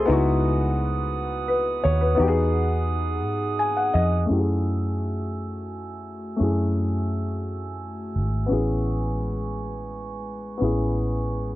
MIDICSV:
0, 0, Header, 1, 4, 480
1, 0, Start_track
1, 0, Tempo, 701754
1, 54, Time_signature, 6, 3, 24, 8
1, 7904, End_track
2, 0, Start_track
2, 0, Title_t, "Glass harmonica"
2, 0, Program_c, 0, 92
2, 51, Note_on_c, 0, 78, 63
2, 52, Note_on_c, 0, 87, 79
2, 53, Note_on_c, 0, 66, 68
2, 53, Note_on_c, 0, 71, 67
2, 1479, Note_off_c, 0, 66, 0
2, 1479, Note_off_c, 0, 71, 0
2, 1479, Note_off_c, 0, 87, 0
2, 1496, Note_on_c, 0, 63, 80
2, 1499, Note_on_c, 0, 68, 66
2, 1499, Note_on_c, 0, 87, 82
2, 2905, Note_off_c, 0, 78, 0
2, 2921, Note_off_c, 0, 63, 0
2, 2922, Note_off_c, 0, 68, 0
2, 2922, Note_off_c, 0, 87, 0
2, 2931, Note_on_c, 0, 57, 54
2, 2931, Note_on_c, 0, 88, 69
2, 2933, Note_on_c, 0, 66, 60
2, 2933, Note_on_c, 0, 80, 47
2, 5785, Note_off_c, 0, 57, 0
2, 5785, Note_off_c, 0, 88, 0
2, 5786, Note_off_c, 0, 66, 0
2, 5786, Note_off_c, 0, 80, 0
2, 5813, Note_on_c, 0, 85, 64
2, 5814, Note_on_c, 0, 71, 59
2, 5814, Note_on_c, 0, 80, 55
2, 5816, Note_on_c, 0, 56, 60
2, 7904, Note_off_c, 0, 56, 0
2, 7904, Note_off_c, 0, 71, 0
2, 7904, Note_off_c, 0, 80, 0
2, 7904, Note_off_c, 0, 85, 0
2, 7904, End_track
3, 0, Start_track
3, 0, Title_t, "Grand piano"
3, 0, Program_c, 1, 0
3, 0, Control_c, 1, 64, 127
3, 0, Note_on_c, 1, 68, 68
3, 38, Note_on_c, 1, 59, 87
3, 51, Note_on_c, 1, 63, 77
3, 63, Control_c, 1, 64, 0
3, 68, Note_on_c, 1, 64, 80
3, 82, Note_on_c, 1, 66, 92
3, 162, Control_c, 1, 64, 127
3, 163, Note_off_c, 1, 68, 0
3, 1013, Note_on_c, 1, 71, 68
3, 1242, Note_off_c, 1, 71, 0
3, 1256, Note_on_c, 1, 73, 81
3, 1369, Note_off_c, 1, 73, 0
3, 1374, Note_on_c, 1, 71, 67
3, 1459, Note_off_c, 1, 59, 0
3, 1465, Note_off_c, 1, 63, 0
3, 1470, Note_on_c, 1, 59, 83
3, 1474, Note_off_c, 1, 64, 0
3, 1481, Note_off_c, 1, 66, 0
3, 1486, Note_on_c, 1, 63, 69
3, 1499, Note_on_c, 1, 66, 69
3, 1503, Control_c, 1, 64, 0
3, 1515, Note_on_c, 1, 67, 81
3, 1549, Note_off_c, 1, 67, 0
3, 1560, Note_on_c, 1, 68, 84
3, 1602, Note_off_c, 1, 71, 0
3, 1621, Control_c, 1, 64, 127
3, 2457, Note_on_c, 1, 80, 75
3, 2567, Note_off_c, 1, 80, 0
3, 2577, Note_on_c, 1, 78, 72
3, 2687, Note_off_c, 1, 78, 0
3, 2694, Note_on_c, 1, 75, 75
3, 2895, Note_off_c, 1, 59, 0
3, 2902, Note_off_c, 1, 63, 0
3, 2909, Note_off_c, 1, 66, 0
3, 2913, Note_on_c, 1, 57, 64
3, 2917, Note_off_c, 1, 75, 0
3, 2924, Note_on_c, 1, 61, 60
3, 2940, Note_off_c, 1, 68, 0
3, 2940, Note_on_c, 1, 64, 63
3, 2942, Control_c, 1, 64, 0
3, 2954, Note_on_c, 1, 67, 59
3, 2988, Note_off_c, 1, 67, 0
3, 2998, Note_on_c, 1, 68, 68
3, 3083, Control_c, 1, 64, 127
3, 4336, Note_off_c, 1, 57, 0
3, 4342, Note_off_c, 1, 61, 0
3, 4350, Note_off_c, 1, 64, 0
3, 4353, Note_on_c, 1, 57, 67
3, 4366, Note_on_c, 1, 61, 66
3, 4379, Note_off_c, 1, 68, 0
3, 4380, Note_on_c, 1, 64, 66
3, 4396, Note_on_c, 1, 68, 73
3, 5776, Note_off_c, 1, 57, 0
3, 5783, Note_off_c, 1, 61, 0
3, 5789, Note_on_c, 1, 59, 71
3, 5790, Note_off_c, 1, 64, 0
3, 5798, Note_off_c, 1, 68, 0
3, 5802, Note_on_c, 1, 61, 62
3, 5817, Note_on_c, 1, 64, 62
3, 5823, Control_c, 1, 64, 0
3, 5831, Note_on_c, 1, 68, 80
3, 5928, Control_c, 1, 64, 127
3, 7214, Note_off_c, 1, 59, 0
3, 7221, Note_off_c, 1, 61, 0
3, 7228, Note_off_c, 1, 64, 0
3, 7234, Note_on_c, 1, 59, 70
3, 7235, Note_off_c, 1, 68, 0
3, 7246, Note_on_c, 1, 61, 58
3, 7262, Note_on_c, 1, 64, 65
3, 7274, Note_on_c, 1, 68, 73
3, 7904, Note_off_c, 1, 59, 0
3, 7904, Note_off_c, 1, 61, 0
3, 7904, Note_off_c, 1, 64, 0
3, 7904, Note_off_c, 1, 68, 0
3, 7904, End_track
4, 0, Start_track
4, 0, Title_t, "Fingered electric bass"
4, 0, Program_c, 2, 33
4, 64, Note_on_c, 2, 37, 117
4, 1232, Note_off_c, 2, 37, 0
4, 1265, Note_on_c, 2, 39, 98
4, 1476, Note_off_c, 2, 39, 0
4, 1503, Note_on_c, 2, 40, 122
4, 2221, Note_off_c, 2, 40, 0
4, 2221, Note_on_c, 2, 44, 103
4, 2670, Note_off_c, 2, 44, 0
4, 2702, Note_on_c, 2, 41, 107
4, 2914, Note_off_c, 2, 41, 0
4, 2944, Note_on_c, 2, 42, 86
4, 4352, Note_off_c, 2, 42, 0
4, 4383, Note_on_c, 2, 42, 89
4, 5579, Note_on_c, 2, 32, 81
4, 5590, Note_off_c, 2, 42, 0
4, 5793, Note_off_c, 2, 32, 0
4, 5822, Note_on_c, 2, 33, 99
4, 7231, Note_off_c, 2, 33, 0
4, 7262, Note_on_c, 2, 33, 89
4, 7904, Note_off_c, 2, 33, 0
4, 7904, End_track
0, 0, End_of_file